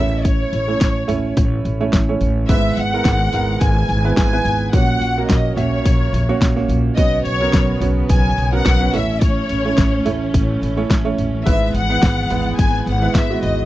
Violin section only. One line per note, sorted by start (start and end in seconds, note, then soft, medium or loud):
0.00 0.23 E5 medium
0.25 1.37 C#5 medium
2.50 2.76 E5 loud
2.78 3.62 F#5 loud
3.61 4.16 G#5 loud
4.17 4.69 G#5 loud
4.73 5.25 F#5 loud
5.29 5.57 D#5 medium
5.57 6.66 C#5 medium
6.98 7.24 D#5 loud
7.26 7.78 C#5 loud
8.12 8.52 G#5 loud
8.56 8.95 F#5 loud
8.96 9.23 E5 loud
9.23 10.35 C#5 medium
11.48 11.73 E5 loud
11.76 12.55 F#5 loud
12.60 12.85 G#5 loud
12.89 13.14 F#5 loud
13.16 13.43 E5 loud
13.45 13.65 D#5 loud